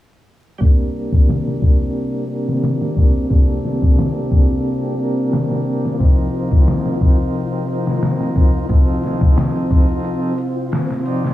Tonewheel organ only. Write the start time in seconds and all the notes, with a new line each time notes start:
0.58 G3 A#3
0.63 D4 A#4
2.27 G3 A#3
2.31 D4 A#4
3.29 G3 A#3
3.33 D4 A4
4.97 G3 A#3 D4
5.03 A#4
5.98 F3 C4
6.02 D#4 A#4
7.66 F3 C4
7.70 D#4 A#4
8.67 F3 C4
8.71 D#4 A4
11.05 F3 C4 D#4 D5